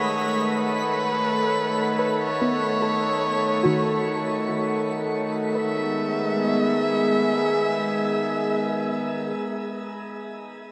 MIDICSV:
0, 0, Header, 1, 6, 480
1, 0, Start_track
1, 0, Key_signature, 4, "major"
1, 0, Tempo, 816327
1, 1318, Time_signature, 4, 2, 24, 8
1, 1800, Tempo, 836820
1, 3240, Tempo, 820793
1, 6250, End_track
2, 0, Start_track
2, 0, Title_t, "Synth texture"
2, 0, Program_c, 0, 99
2, 0, Note_on_c, 0, 83, 76
2, 3237, Note_off_c, 0, 83, 0
2, 6250, End_track
3, 0, Start_track
3, 0, Title_t, "Electric violin"
3, 0, Program_c, 1, 40
3, 0, Note_on_c, 1, 73, 82
3, 351, Note_on_c, 1, 71, 84
3, 360, Note_off_c, 1, 73, 0
3, 1314, Note_off_c, 1, 71, 0
3, 1318, Note_on_c, 1, 73, 80
3, 2734, Note_off_c, 1, 73, 0
3, 3233, Note_on_c, 1, 76, 78
3, 5425, Note_off_c, 1, 76, 0
3, 6250, End_track
4, 0, Start_track
4, 0, Title_t, "Ambient pad"
4, 0, Program_c, 2, 92
4, 0, Note_on_c, 2, 57, 78
4, 0, Note_on_c, 2, 69, 80
4, 0, Note_on_c, 2, 71, 62
4, 0, Note_on_c, 2, 73, 77
4, 0, Note_on_c, 2, 78, 74
4, 455, Note_off_c, 2, 71, 0
4, 3233, Note_on_c, 2, 56, 68
4, 3239, Note_off_c, 2, 78, 0
4, 3244, Note_off_c, 2, 57, 0
4, 3246, Note_off_c, 2, 69, 0
4, 3247, Note_off_c, 2, 73, 0
4, 3315, Note_on_c, 2, 59, 64
4, 3364, Note_on_c, 2, 68, 71
4, 3455, Note_on_c, 2, 76, 67
4, 5426, Note_off_c, 2, 56, 0
4, 5508, Note_off_c, 2, 59, 0
4, 5557, Note_off_c, 2, 68, 0
4, 5595, Note_off_c, 2, 76, 0
4, 6250, End_track
5, 0, Start_track
5, 0, Title_t, "Synth pluck"
5, 0, Program_c, 3, 84
5, 0, Note_on_c, 3, 61, 68
5, 1170, Note_on_c, 3, 71, 67
5, 1265, Note_off_c, 3, 61, 0
5, 1419, Note_on_c, 3, 59, 72
5, 1658, Note_on_c, 3, 69, 57
5, 1752, Note_off_c, 3, 71, 0
5, 2127, Note_on_c, 3, 66, 65
5, 2137, Note_on_c, 3, 51, 70
5, 2232, Note_off_c, 3, 69, 0
5, 2235, Note_off_c, 3, 59, 0
5, 3228, Note_on_c, 3, 71, 57
5, 4242, Note_off_c, 3, 66, 0
5, 4249, Note_off_c, 3, 51, 0
5, 5420, Note_off_c, 3, 71, 0
5, 6250, End_track
6, 0, Start_track
6, 0, Title_t, "Harmonium"
6, 0, Program_c, 4, 20
6, 0, Note_on_c, 4, 51, 62
6, 3234, Note_off_c, 4, 51, 0
6, 3243, Note_on_c, 4, 51, 59
6, 5435, Note_off_c, 4, 51, 0
6, 6250, End_track
0, 0, End_of_file